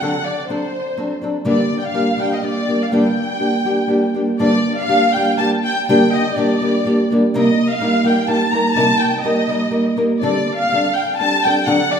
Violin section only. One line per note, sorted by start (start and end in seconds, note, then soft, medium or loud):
0.00 0.24 F#5 medium
0.23 0.47 D5 medium
0.47 1.18 C5 medium
1.47 1.74 D5 medium
1.79 1.83 G5 medium
1.83 2.19 F5 medium
2.20 2.31 G5 medium
2.33 2.43 D#5 medium
2.43 2.80 D5 medium
2.82 2.92 F5 medium
2.93 4.13 G5 medium
4.40 4.75 D5 loud
4.77 5.11 F5 loud
5.11 5.36 G5 loud
5.37 5.49 A5 loud
5.64 5.85 G5 loud
5.88 6.11 G5 loud
6.13 6.36 D#5 loud
6.35 7.08 D5 medium
7.38 7.69 D#5 medium
7.71 8.05 F5 loud
8.06 8.28 G5 medium
8.27 8.52 A5 loud
8.51 8.74 A#5 loud
8.73 8.97 A5 loud
8.98 9.22 G5 medium
9.21 9.92 D#5 medium
10.19 10.55 D5 medium
10.56 10.91 F5 loud
10.93 11.17 G5 medium
11.17 11.41 A5 loud
11.44 11.66 G5 loud
11.65 11.90 F#5 loud
11.91 12.00 D5 medium